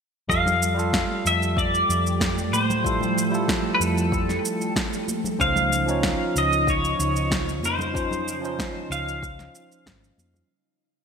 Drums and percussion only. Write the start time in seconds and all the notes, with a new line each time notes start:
0.29 kick, shaker
0.46 low conga, shaker
0.63 shaker
0.79 shaker
0.93 kick, snare, shaker
1.26 shaker
1.43 shaker
1.57 kick, shaker
1.75 shaker
1.90 shaker
2.07 shaker
2.21 kick, snare, shaker
2.38 shaker
2.53 high conga, shaker
2.70 low conga, shaker
2.85 kick, shaker
3.01 low conga, shaker
3.18 shaker
3.34 shaker
3.48 kick, snare, shaker
3.81 shaker
3.98 shaker
4.12 kick, shaker
4.29 snare, shaker
4.45 shaker
4.61 shaker
4.76 kick, snare, shaker
4.93 shaker
5.08 high conga, shaker
5.24 low conga, shaker
5.40 kick, shaker
5.56 low conga, shaker
5.73 shaker
5.88 shaker
6.03 kick, snare, shaker
6.36 shaker
6.53 shaker
6.67 kick, shaker
6.85 shaker
7.00 shaker
7.16 shaker
7.31 kick, snare, shaker
7.49 shaker
7.63 high conga, shaker
7.79 low conga, shaker
7.95 kick, shaker
8.11 low conga, shaker
8.28 shaker
8.45 shaker
8.59 kick, snare, shaker
8.92 shaker
9.08 shaker
9.23 kick, shaker
9.39 snare, shaker
9.55 shaker
9.72 shaker
9.86 kick, snare, shaker
10.04 shaker
10.18 high conga, shaker
10.34 low conga, shaker